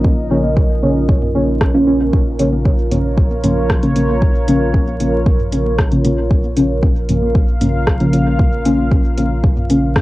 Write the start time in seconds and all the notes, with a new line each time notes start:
Already playing: A#1 C#3 F3 A#3 C#4 F4 A#4 D#5
0.04 kick, high conga
0.31 C#3 F3 A#3 C#4
0.44 high conga
0.57 kick
0.83 C#3 F3 A#3 C#4, high conga
1.09 kick
1.22 mid tom, high conga
1.35 C#3 F3 A#3 C#4
1.61 kick, cross-stick, high conga
1.74 C#3 F3 A#3 C#4
1.87 C#3 F3 A#3 C#4
2.00 high conga
2.13 A#1 C#5, kick, high conga
2.39 C#3 F3 A#3 C#4, closed hi-hat
2.52 high conga
2.65 kick
2.91 C#3 F3 A#3 C#4, closed hi-hat, mid tom, high conga
3.18 kick
3.31 high conga
3.44 C#3 F3 A#3 C#4, closed hi-hat, mid tom
3.70 kick, cross-stick, high conga
3.83 C#3 F3 A#3 C#4, closed hi-hat
3.96 C#3 F3 A#3 C#4, closed hi-hat
4.09 high conga
4.22 kick
4.48 C#3 F3 A#3 C#4, closed hi-hat, high conga
4.74 kick
4.87 high conga
5.00 C#3 F3 A#3 C#4, closed hi-hat
5.26 kick, high conga
5.39 mid tom
5.52 C#3 F3 A#3 C#4, closed hi-hat
5.66 high conga
5.78 kick, cross-stick
5.92 C#3 F3 A#3 C#4, closed hi-hat
6.04 C#3 F3 A#3 C#4, closed hi-hat, high conga
6.31 F5, kick
6.44 high conga
6.57 C#3 F3 A#3 C#4, closed hi-hat
6.83 kick, high conga
7.09 C#3 F3 A#3 C#4, closed hi-hat, mid tom
7.22 high conga
7.35 kick
7.61 C#3 F3 A#3 C#4, closed hi-hat, mid tom, high conga
7.87 kick, cross-stick
8.00 C#3 F3 A#3 C#4, closed hi-hat, high conga
8.13 C#3 F3 A#3 C#4, closed hi-hat
8.39 kick, high conga
8.65 C#3 F3 A#3 C#4, closed hi-hat
8.79 high conga
8.91 kick
9.18 C#3 F3 A#3 C#4, closed hi-hat, high conga
9.44 kick
9.57 mid tom, high conga
9.70 C#3 F3 A#3 C#4, closed hi-hat
9.96 kick, cross-stick, high conga